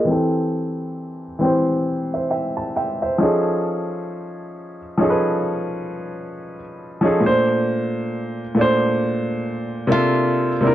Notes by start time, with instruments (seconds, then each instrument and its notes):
0.05 upright piano E3 C4
0.09 upright piano G4 A4
1.39 upright piano E3 C4 G4
1.45 upright piano C5
2.14 upright piano C5 E5
2.30 upright piano E5 G5
2.57 upright piano A5
2.76 upright piano E5 G5
3.02 upright piano C5 E5
3.18 upright piano F3 C#4 D#4
3.23 upright piano G#4 A4
4.97 upright piano F3 C#4 D#4
5.02 upright piano G#4 A4
5.10 upright piano B4
7.01 upright piano F3 C#4 D#4
7.05 upright piano G#4 A4
7.20 upright piano A#2 A3 D4
7.26 upright piano C5
8.55 upright piano A#2 A3
8.59 upright piano D4 C5
9.87 upright piano C3 A#3 D4
9.92 nylon-string guitar F4, upright piano A4 E5
10.61 upright piano C3 A#3 D4
10.65 upright piano E4 A#4